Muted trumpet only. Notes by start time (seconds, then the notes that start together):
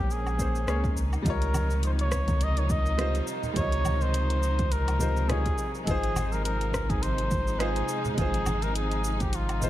Already playing: G4
0.12 G#4
1.27 A#4
1.85 C5
2.01 C#5
2.43 D#5
2.59 C#5
2.71 D#5
3.57 C#5
4.02 C5
4.72 A#4
5.29 G#4
5.87 G#4
6.32 A#4
6.44 A#4
6.90 G#4
7.02 C5
7.60 G#4
8.18 G#4
8.63 A#4
8.77 G#4
9.21 G4
9.35 F4